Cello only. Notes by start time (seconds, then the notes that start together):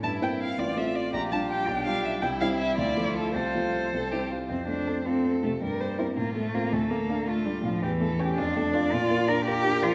0.04 E4
0.59 F4
1.15 G4
1.68 D4
2.23 E4
3.36 A4
4.50 C4
4.68 D4
5.06 C4
5.43 A3
5.62 G3
6.17 A#3
6.36 A3
6.54 A#3
6.73 A3
6.90 A#3
7.28 A3
7.46 G3
7.64 F3
7.82 E3
8.38 D4
8.93 F4
9.28 A#4
9.46 G4
9.83 F4